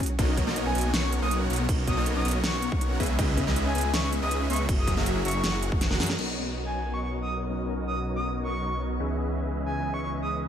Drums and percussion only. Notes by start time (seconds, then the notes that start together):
0.00 kick, closed hi-hat
0.06 closed hi-hat
0.19 kick, closed hi-hat, crash
0.37 kick, closed hi-hat
0.47 snare
0.56 closed hi-hat
0.75 closed hi-hat
0.78 closed hi-hat
0.81 closed hi-hat
0.94 snare, closed hi-hat
1.12 closed hi-hat
1.31 closed hi-hat
1.50 closed hi-hat
1.53 closed hi-hat
1.56 closed hi-hat
1.69 kick, closed hi-hat, crash
1.87 kick, closed hi-hat
2.06 closed hi-hat
2.25 closed hi-hat
2.28 closed hi-hat
2.31 closed hi-hat
2.44 snare, closed hi-hat
2.62 closed hi-hat
2.72 kick
2.81 closed hi-hat
3.00 kick, closed hi-hat
3.03 closed hi-hat
3.06 closed hi-hat
3.19 kick, closed hi-hat, crash
3.37 kick, closed hi-hat
3.47 snare
3.56 closed hi-hat
3.75 closed hi-hat
3.78 closed hi-hat
3.81 closed hi-hat
3.94 snare, closed hi-hat
4.13 closed hi-hat
4.31 closed hi-hat
4.50 closed hi-hat
4.53 closed hi-hat
4.56 closed hi-hat
4.69 kick, closed hi-hat, crash
4.87 kick, closed hi-hat
4.97 snare
5.06 closed hi-hat
5.25 closed hi-hat
5.28 closed hi-hat
5.31 closed hi-hat
5.44 snare, closed hi-hat
5.63 closed hi-hat
5.72 kick
5.81 snare, closed hi-hat
5.91 snare
6.00 snare, closed hi-hat, open hi-hat
6.06 snare, closed hi-hat
6.19 crash